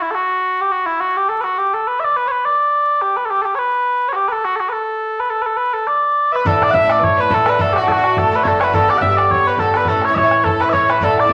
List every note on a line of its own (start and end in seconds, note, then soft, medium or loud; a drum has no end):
0.02 0.11 E4 medium
0.11 0.61 F#4 medium
0.11 0.15 A4 medium
0.61 0.72 G4 medium
0.72 0.86 F#4 medium
0.86 1.00 E4 medium
1.00 1.17 F#4 medium
1.17 1.29 G4 medium
1.29 1.41 A4 medium
1.41 1.58 F#4 medium
1.41 1.44 B4 medium
1.58 1.74 G4 medium
1.74 1.87 A4 medium
1.87 2.00 B4 medium
2.00 2.04 E5 medium
2.04 2.17 D5 medium
2.17 2.28 B4 medium
2.28 2.45 B4 medium
2.28 2.31 C#5 medium
2.45 3.02 D5 medium
3.02 3.17 G4 medium
3.17 3.25 B4 medium
3.25 3.30 A4 medium
3.30 3.42 G4 medium
3.42 3.55 G4 medium
3.42 3.45 A4 medium
3.55 4.09 B4 medium
3.55 3.59 C#5 medium
4.09 4.13 C#5 medium
4.13 4.16 F#4 medium
4.13 4.28 G4 medium
4.28 4.45 A4 medium
4.28 4.32 B4 medium
4.45 4.56 F#4 medium
4.56 4.60 A4 medium
4.60 4.69 F#4 medium
4.69 5.20 A4 medium
4.69 4.72 B4 medium
5.20 5.30 B4 medium
5.30 5.42 A4 medium
5.42 5.46 B4 medium
5.46 5.57 A4 medium
5.57 5.73 B4 medium
5.73 5.87 A4 medium
5.87 6.32 D5 medium
6.32 6.44 B4 medium
6.32 6.47 B4 medium
6.32 6.36 E5 medium
6.45 6.70 A1 loud
6.45 6.68 A2 medium
6.45 6.68 D3 medium
6.45 6.68 D4 medium
6.45 6.67 E4 medium
6.45 6.63 A4 medium
6.45 6.54 A4 medium
6.45 bodhran medium
6.62 6.76 D5 medium
6.62 6.71 D5 loud
6.62 bodhran medium
6.68 6.83 D3 soft
6.68 6.83 D4 soft
6.68 6.81 E4 medium
6.68 6.75 F#5 loud
6.73 6.98 A1 loud
6.73 6.92 E5 medium
6.73 6.92 E5 loud
6.73 bodhran medium
6.82 7.18 D3 soft
6.82 7.20 D4 soft
6.82 7.19 E4 medium
6.90 7.00 D5 medium
6.90 7.04 D5 medium
6.90 bodhran medium
6.98 7.26 A2 medium
6.98 7.06 B4 medium
7.03 7.20 C#5 medium
7.03 7.18 C#5 medium
7.03 bodhran medium
7.10 bodhran soft
7.18 7.29 A2 soft
7.18 7.30 D3 medium
7.18 7.32 D4 soft
7.18 7.32 E4 medium
7.18 7.32 B4 medium
7.18 7.34 B4 medium
7.30 7.55 A1 medium
7.30 7.44 A2 medium
7.30 7.46 D3 medium
7.30 7.47 D4 medium
7.30 7.48 E4 medium
7.30 7.47 A4 medium
7.30 bodhran medium
7.34 7.49 A4 loud
7.45 7.58 A2 medium
7.45 7.59 D3 medium
7.45 7.59 D4 medium
7.45 7.61 E4 medium
7.45 7.61 B4 medium
7.45 bodhran medium
7.49 7.61 B4 medium
7.59 7.84 A1 medium
7.59 7.81 A2 medium
7.59 7.82 E3 medium
7.59 7.82 D4 medium
7.59 7.81 F#4 medium
7.59 7.75 A4 loud
7.59 7.73 A4 medium
7.59 bodhran medium
7.73 7.86 F#4 medium
7.73 7.78 G4 medium
7.73 bodhran medium
7.78 7.88 F#4 medium
7.78 7.95 F#4 medium
7.83 7.98 E3 soft
7.83 7.97 D4 medium
7.83 8.18 F#4 medium
7.88 8.13 A1 medium
7.88 8.18 F#4 medium
7.88 7.92 A4 medium
7.88 bodhran medium
7.96 8.32 E3 medium
7.96 8.33 D4 medium
7.96 8.33 F#4 medium
8.04 bodhran medium
8.16 8.41 A2 medium
8.16 8.43 A4 medium
8.16 8.35 A4 medium
8.16 bodhran medium
8.32 8.43 A2 medium
8.32 8.44 E3 medium
8.32 8.46 D4 medium
8.32 8.46 F#4 medium
8.32 8.43 B4 medium
8.43 8.73 F#1 medium
8.43 8.60 A2 medium
8.43 8.61 E3 medium
8.43 8.62 D4 medium
8.43 8.62 F#4 medium
8.43 8.62 A4 medium
8.43 8.48 C#5 medium
8.43 bodhran medium
8.48 8.60 A4 medium
8.60 8.72 A2 soft
8.60 8.74 E3 medium
8.60 8.74 D4 medium
8.60 8.74 B4 medium
8.60 8.64 C#5 medium
8.60 bodhran medium
8.64 8.75 F#4 medium
8.72 8.98 G1 medium
8.72 8.96 A2 medium
8.72 8.96 D3 medium
8.72 8.95 B3 medium
8.72 8.93 G4 medium
8.72 8.90 A4 medium
8.72 8.90 A4 loud
8.72 bodhran medium
8.88 9.03 D5 medium
8.88 8.98 D5 medium
8.88 bodhran medium
8.94 9.11 D3 medium
8.94 9.10 B3 soft
8.94 9.08 G4 medium
8.94 9.02 F#5 medium
9.01 9.26 G1 loud
9.01 9.19 E5 medium
9.01 9.16 E5 medium
9.01 bodhran medium
9.09 9.46 D3 soft
9.09 9.47 B3 medium
9.09 9.46 G4 medium
9.16 9.31 D5 medium
9.16 bodhran medium
9.29 9.55 G2 medium
9.29 9.50 C#5 medium
9.29 9.47 C#5 medium
9.29 bodhran medium
9.39 bodhran soft
9.46 9.58 A2 medium
9.46 9.59 D3 medium
9.46 9.60 B3 medium
9.46 9.61 G4 medium
9.46 9.59 B4 medium
9.46 9.60 B4 medium
9.57 9.86 G1 medium
9.57 9.73 A2 medium
9.57 9.75 D3 medium
9.57 9.75 B3 medium
9.57 9.77 A4 medium
9.57 9.75 A4 medium
9.57 bodhran medium
9.62 9.76 G4 medium
9.74 9.86 A2 soft
9.74 9.88 D3 medium
9.74 9.88 B3 medium
9.74 9.89 G4 medium
9.74 9.88 B4 medium
9.74 bodhran medium
9.85 10.11 A1 loud
9.85 10.10 A2 medium
9.85 10.10 E3 medium
9.85 10.05 A4 medium
9.85 10.03 A4 medium
9.85 bodhran medium
9.90 10.10 C#4 medium
9.90 10.08 E4 medium
10.02 10.15 C#5 medium
10.02 bodhran medium
10.06 10.22 E4 medium
10.06 10.17 C#5 medium
10.11 10.25 E3 medium
10.11 10.23 C#4 medium
10.11 10.18 E5 loud
10.16 10.41 A1 loud
10.16 10.44 C#5 loud
10.16 bodhran medium
10.21 10.61 C#4 medium
10.21 10.60 E4 medium
10.21 10.48 C#5 medium
10.27 10.60 E3 soft
10.31 bodhran medium
10.44 10.69 A2 medium
10.44 10.61 A4 medium
10.44 bodhran medium
10.53 bodhran soft
10.60 10.70 A2 medium
10.60 10.71 E3 medium
10.60 10.73 C#4 medium
10.60 10.73 E4 medium
10.60 10.75 B4 medium
10.60 10.69 B4 medium
10.60 bodhran soft
10.69 10.86 A2 medium
10.69 10.87 E3 medium
10.69 10.90 C#5 loud
10.69 10.73 E5 loud
10.74 10.98 A1 medium
10.74 10.88 C#4 medium
10.74 10.89 E4 medium
10.74 10.91 C#5 medium
10.74 bodhran medium
10.87 11.00 A2 medium
10.87 11.01 E3 medium
10.87 11.02 C#4 medium
10.87 11.02 E4 medium
10.87 11.02 B4 medium
10.87 11.04 B4 medium
10.87 bodhran medium
11.01 11.27 A1 loud
11.01 11.24 A2 medium
11.01 11.24 D3 medium
11.01 11.25 A3 medium
11.01 11.23 E4 medium
11.01 11.17 A4 medium
11.01 11.20 A4 medium
11.01 bodhran medium
11.18 11.31 D5 medium
11.18 11.32 D5 medium
11.18 bodhran soft
11.24 11.33 D3 medium
11.24 11.33 A3 soft
11.24 11.33 E4 medium
11.29 11.33 A1 medium
11.29 11.33 E5 medium
11.29 bodhran medium